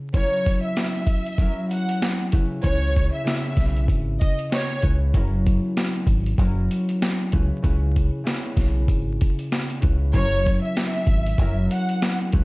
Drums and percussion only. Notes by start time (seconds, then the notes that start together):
0.14 kick, closed hi-hat
0.46 kick, closed hi-hat
0.77 snare, closed hi-hat
1.07 kick, closed hi-hat
1.26 closed hi-hat
1.38 kick, closed hi-hat
1.71 closed hi-hat
1.89 closed hi-hat
2.02 snare, closed hi-hat
2.32 kick, closed hi-hat
2.64 kick, closed hi-hat
2.96 kick, closed hi-hat
3.27 snare, closed hi-hat
3.57 kick, snare, closed hi-hat
3.77 closed hi-hat
3.88 kick, closed hi-hat
4.21 kick, closed hi-hat
4.39 closed hi-hat
4.52 snare, closed hi-hat
4.82 kick, closed hi-hat
5.14 kick, closed hi-hat
5.46 kick, closed hi-hat
5.77 snare, closed hi-hat
6.07 kick, closed hi-hat
6.26 closed hi-hat
6.38 kick, closed hi-hat
6.71 closed hi-hat
6.89 closed hi-hat
7.02 snare, closed hi-hat
7.32 kick, closed hi-hat
7.64 kick, closed hi-hat
7.96 kick, closed hi-hat
8.27 snare, closed hi-hat
8.57 kick, snare, closed hi-hat
8.88 kick, closed hi-hat
9.21 kick, closed hi-hat
9.39 closed hi-hat
9.52 snare, closed hi-hat
9.70 closed hi-hat
9.82 kick, closed hi-hat
10.14 kick, closed hi-hat
10.46 kick, closed hi-hat
10.77 snare, closed hi-hat
11.07 kick, closed hi-hat
11.26 closed hi-hat
11.38 kick, closed hi-hat
11.71 closed hi-hat
11.89 closed hi-hat
12.02 snare, closed hi-hat
12.32 kick, closed hi-hat